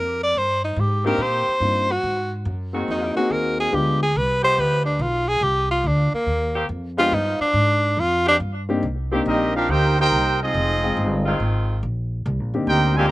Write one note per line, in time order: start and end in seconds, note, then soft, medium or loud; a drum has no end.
0.00 0.33 F2 loud
0.00 0.23 A#4 medium
0.23 0.40 D5 loud
0.35 0.75 G2 medium
0.35 0.64 C5 loud
0.64 0.81 D#4 medium
0.76 1.17 G#2 loud
0.76 1.06 G4 medium
1.04 1.58 D#3 loud
1.04 1.17 A#3 medium
1.04 1.58 A#3 loud
1.04 1.58 C4 loud
1.04 1.17 C4 medium
1.04 1.17 D4 medium
1.04 1.18 D#4 medium
1.04 1.18 G4 medium
1.04 1.59 G4 loud
1.04 1.23 A#4 loud
1.18 1.45 A#2 medium
1.18 1.93 C5 loud
1.48 muted upright bass stroke soft
1.60 2.02 G2 medium
1.60 1.86 A#3 soft
1.60 1.86 C4 soft
1.60 1.86 D4 soft
1.60 1.87 D#4 soft
1.60 1.87 F4 medium
1.92 2.33 F#4 loud
2.03 2.44 G#2 medium
2.45 2.86 F#2 loud
2.73 3.27 D#3 loud
2.73 3.27 G#3 medium
2.73 3.13 A#3 medium
2.73 3.27 C4 medium
2.73 3.13 C4 soft
2.73 3.13 D#4 medium
2.73 3.27 F#4 loud
2.73 3.14 F#4 medium
2.73 3.13 G#4 medium
2.88 3.15 F2 medium
2.88 3.16 D#4 medium
3.16 3.69 A#3 medium
3.16 3.70 C4 medium
3.16 3.70 D#4 medium
3.16 3.70 F#4 medium
3.16 3.34 F#4 medium
3.16 3.70 G#4 medium
3.16 muted upright bass stroke soft
3.30 3.71 D#2 medium
3.30 3.60 A#4 loud
3.60 3.77 G#4 loud
3.72 4.14 D2 medium
3.72 3.98 G#3 medium
3.72 3.98 B3 medium
3.72 3.98 D4 medium
3.72 3.98 F4 medium
3.72 3.98 G4 medium
3.72 4.02 G4 medium
4.03 4.19 G#4 loud
4.15 4.56 C2 loud
4.15 4.44 B4 medium
4.43 4.97 F3 loud
4.43 4.97 G#3 medium
4.43 4.97 B3 medium
4.43 4.97 G4 loud
4.43 4.61 C5 loud
4.58 4.99 D2 medium
4.58 4.85 B4 loud
4.86 5.03 D4 medium
4.99 5.40 B1 loud
4.99 5.30 F4 medium
5.28 5.45 G#4 loud
5.41 5.83 C2 loud
5.41 5.71 G4 loud
5.71 5.89 F4 medium
5.84 6.11 D2 loud
5.84 6.14 D4 medium
6.13 6.67 A#3 medium
6.13 muted upright bass stroke soft
6.26 6.68 D#2 medium
6.55 6.65 D#3 loud
6.55 6.65 A#3 medium
6.55 6.65 C4 medium
6.55 6.65 G4 loud
6.69 7.11 F2 loud
6.97 7.52 F3 loud
6.97 7.11 G#3 medium
6.97 7.52 G#3 medium
6.97 7.52 B3 medium
6.97 7.11 B3 medium
6.97 7.11 D4 medium
6.97 7.52 F4 loud
6.97 7.11 F4 medium
6.97 7.16 F4 loud
6.97 7.11 G4 medium
7.12 7.39 G2 medium
7.12 7.41 D#4 loud
7.40 8.01 D4 loud
7.40 muted upright bass stroke soft
7.54 7.96 G#2 loud
7.97 8.39 F2 medium
7.97 8.28 F4 loud
8.26 8.36 F3 loud
8.26 8.36 G#3 medium
8.26 8.36 B3 medium
8.26 8.36 D4 loud
8.26 8.36 G4 loud
8.40 8.82 G2 loud
8.69 8.82 A#3 medium
8.69 8.82 C4 medium
8.69 8.82 D4 medium
8.69 8.82 D#4 medium
8.69 8.82 G4 medium
8.83 9.25 C2 medium
9.12 9.22 D#3 medium
9.12 9.66 A#3 medium
9.12 9.21 A#3 medium
9.12 9.21 C4 loud
9.12 9.66 C4 medium
9.12 9.66 D4 medium
9.12 9.66 D#4 medium
9.12 9.22 G4 loud
9.12 9.66 G4 medium
9.26 9.67 A#1 loud
9.26 9.53 G3 medium
9.26 9.53 A#3 medium
9.26 9.54 C4 medium
9.26 9.53 D#4 medium
9.26 9.54 G4 medium
9.26 9.54 A#4 medium
9.26 9.54 D#5 medium
9.56 9.68 D4 medium
9.56 9.68 F4 medium
9.56 9.69 G4 medium
9.56 9.69 A#4 medium
9.56 9.69 F5 loud
9.68 10.10 D2 medium
9.68 9.88 D#3 medium
9.68 9.88 A#3 medium
9.68 9.98 A#3 loud
9.68 9.88 C4 medium
9.68 9.98 D#4 loud
9.68 9.89 G4 medium
9.68 9.98 G4 loud
9.68 9.98 A#4 medium
9.68 9.98 C5 loud
9.68 9.99 G5 loud
9.99 10.38 A#3 medium
9.99 10.38 D#4 loud
9.99 10.39 D#4 loud
9.99 10.38 G4 loud
9.99 10.39 A#4 medium
9.99 10.39 C5 loud
9.99 10.39 G5 loud
10.11 10.53 C2 medium
10.43 11.27 G#3 medium
10.43 11.27 C4 medium
10.43 11.28 D#4 medium
10.43 11.27 F4 medium
10.43 11.27 G#4 medium
10.43 11.27 D#5 loud
10.54 10.96 F1 loud
10.83 11.37 G#3 medium
10.83 11.37 C4 medium
10.83 11.37 D#4 medium
10.83 11.37 F4 medium
10.83 11.37 G5 medium
10.97 11.38 G1 loud
11.26 11.80 D#3 loud
11.26 11.80 G#3 loud
11.26 11.80 C4 loud
11.26 11.80 F4 loud
11.40 11.81 G#1 medium
11.83 12.24 A#1 loud
12.26 12.39 C2 loud
12.39 12.53 A#1 medium
12.54 12.66 G1 medium
12.54 13.08 A#3 medium
12.54 13.08 C4 medium
12.54 13.08 D4 medium
12.54 13.08 D#4 medium
12.54 13.08 G4 medium
12.67 13.09 D2 loud
12.67 12.95 A#3 medium
12.67 12.95 D#4 medium
12.67 12.95 G4 medium
12.67 12.95 A#4 medium
12.67 12.95 C5 medium
12.67 12.95 G5 loud
12.96 13.11 D#3 loud
12.96 13.10 G#3 medium
12.96 13.11 A#3 loud
12.96 13.11 C4 loud
12.96 13.10 F4 medium
12.96 13.11 G4 loud
12.96 13.11 A#4 medium
12.96 13.11 D5 medium
12.96 13.11 G#5 medium